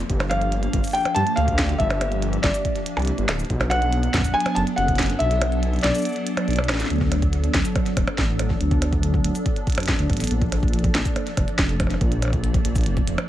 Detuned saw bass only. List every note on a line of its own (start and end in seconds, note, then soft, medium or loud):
0.10 0.68 G1 loud
0.73 0.81 G1 medium
1.16 1.23 G2 medium
1.37 1.74 D2 medium
1.80 2.38 G1 loud
2.44 2.51 G1 medium
2.97 3.11 C2 medium
3.18 3.25 G1 loud
3.29 3.43 D1 loud
3.50 4.08 B1 loud
4.14 4.21 B1 medium
4.56 4.64 F#1 medium
4.78 5.15 F#1 loud
5.20 5.79 B1 loud
5.84 5.91 B1 medium
6.48 6.71 B1 medium
6.69 6.84 A1 medium
6.90 7.49 D2 loud
7.54 7.62 D2 medium
7.97 8.04 D1 medium
8.18 8.55 A1 medium
8.61 9.19 D2 loud
9.24 9.32 D2 medium
9.78 9.92 F#2 medium
9.99 10.06 D2 loud
10.10 10.24 A1 loud
10.31 10.89 A#1 loud
10.95 11.02 A#1 medium
11.37 11.45 F1 medium
11.59 11.96 F1 medium
12.01 12.60 A#1 loud
12.65 12.88 A#1 medium
12.86 13.01 F1 medium
13.07 13.15 F1 medium